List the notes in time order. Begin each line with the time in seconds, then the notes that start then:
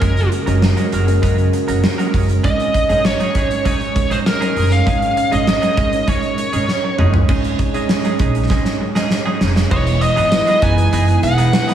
Already playing: C#3 G#3 A#3 F#4 A#4
0.00 F#1 G#3 C#4 F#4 A#4, kick, closed hi-hat
0.16 muted clean electric guitar stroke, closed hi-hat
0.31 muted clean electric guitar stroke, closed hi-hat
0.46 F#1 G#3 C#4 F#4 A#4, closed hi-hat
0.62 muted clean electric guitar stroke, snare
0.77 G#3 C#4 F#4 A#4, closed hi-hat
0.92 F#1 G#3 C#4 F#4 A#4, closed hi-hat
1.07 G#3 C#4 F#4 A#4, muted clean electric guitar stroke, closed hi-hat
1.22 F#2 G#3 C#4 F#4 A#4, kick, closed hi-hat
1.38 muted clean electric guitar stroke, closed hi-hat
1.53 muted clean electric guitar stroke, closed hi-hat
1.68 F#1 G#3 C#4 F#4 A#4, closed hi-hat
1.83 muted clean electric guitar stroke, snare
1.98 G#3 C#4 F#4 A#4, closed hi-hat
2.14 F#1 G#3 C#4 F#4 A#4, kick, open hi-hat
2.29 muted clean electric guitar stroke, closed hi-hat
2.43 G#1 G#2 D#3 G#3 C#4 D#4 G#4 C#5 D#5, kick, closed hi-hat
2.59 muted clean electric guitar stroke, closed hi-hat
2.74 muted clean electric guitar stroke, kick, closed hi-hat
2.89 G#1 G#3 C#4 D#4 G#4 C#5, closed hi-hat
3.04 C#5, muted clean electric guitar stroke, snare
3.20 G#3 C#4 D#4 G#4, closed hi-hat
3.35 G#1 G#3 C#4 D#4 G#4, kick, closed hi-hat
3.50 muted clean electric guitar stroke, closed hi-hat
3.65 G#2 G#3 C#4 D#4 G#4 C#5, kick, closed hi-hat
3.80 muted clean electric guitar stroke, closed hi-hat
3.95 G#3 C#4 D#4 C#5, muted clean electric guitar stroke, kick, closed hi-hat
4.10 G#1 G#3 C#4 D#4 G#4 C5, closed hi-hat
4.26 A#4, snare
4.40 G#3 C#4 D#4 G#4, closed hi-hat
4.56 F#1 G#3 C#4 D#4 G#4, open hi-hat
4.71 F5, muted clean electric guitar stroke, closed hi-hat
4.86 G#1 G#2 G#3 C#4 D#4 G#4 A#4 C#5, kick, closed hi-hat
5.01 muted clean electric guitar stroke, closed hi-hat
5.16 muted clean electric guitar stroke, closed hi-hat
5.31 G#1 G#3 C#4 D#4 G#4 C#5 D#5, closed hi-hat
5.47 D#5, muted clean electric guitar stroke, snare
5.61 G#3 C#4 D#4 G#4, closed hi-hat
5.77 G#1 G#3 C#4 D#4 G#4, kick, closed hi-hat
5.92 G#3 C#4 D#4 C#5, muted clean electric guitar stroke, closed hi-hat
6.07 G#2 G#3 C#4 D#4 G#4 C#5, kick, closed hi-hat
6.23 muted clean electric guitar stroke, closed hi-hat
6.38 muted clean electric guitar stroke, closed hi-hat
6.53 G#1 G#3 C#4 D#4 G#4, closed hi-hat
6.68 muted clean electric guitar stroke, snare
6.84 muted clean electric guitar stroke
6.98 F#1 G#3 C#4 D#4 G#4, mid tom
7.14 muted clean electric guitar stroke, floor tom
7.28 G#1 G#2 D#3 G#3 C#4 D#4 G#4 C#5, kick, crash
7.44 muted clean electric guitar stroke, closed hi-hat
7.58 G#1 G#3 C#4 D#4 C#5, muted clean electric guitar stroke, kick, closed hi-hat
7.73 G#3 C#4 D#4 G#4 C#5, closed hi-hat
7.89 muted clean electric guitar stroke, snare
8.04 G#3 C#4 D#4 G#4, closed hi-hat
8.19 A#1 G#3 C#4 D#4 G#4, kick, closed hi-hat
8.35 muted clean electric guitar stroke, closed hi-hat
8.50 G#1 G#3 C#4 D#4 G#4, kick, snare
8.65 muted clean electric guitar stroke, snare
8.80 muted clean electric guitar stroke
8.95 G#3 C#4 D#4 G#4, snare
9.11 muted clean electric guitar stroke, snare
9.26 G#3 C#4 D#4 G#4
9.41 F1 G#3 C#4 D#4 G#4, snare
9.56 muted clean electric guitar stroke, snare
9.71 E1 E3 G#3 B3 D#4 E4 G#4 B4 C#5, kick, crash
9.86 muted clean electric guitar stroke, closed hi-hat
10.01 D#5, muted clean electric guitar stroke, closed hi-hat
10.16 G#1 E3 B3 D#4 G#4, closed hi-hat
10.31 G#3 B3 D#4 E4 B4, muted clean electric guitar stroke, snare, tambourine
10.47 E3 B3 D#4 G#4, closed hi-hat
10.62 F#1 E3 B3 D#4 G#4 G#5, kick, closed hi-hat
10.77 G#3 B3 D#4 E4 B4, muted clean electric guitar stroke, closed hi-hat
10.92 F#1 E3 B3 D#4 G#4, closed hi-hat
11.08 muted clean electric guitar stroke, closed hi-hat
11.22 E1 G#3 B3 D#4 E4 B4 F#5, muted clean electric guitar stroke, closed hi-hat
11.38 E3 B3 D#4 G#4, closed hi-hat
11.53 muted clean electric guitar stroke, snare, tambourine
11.68 E3 G#3 B3 D#4 E4 G#4 B4, closed hi-hat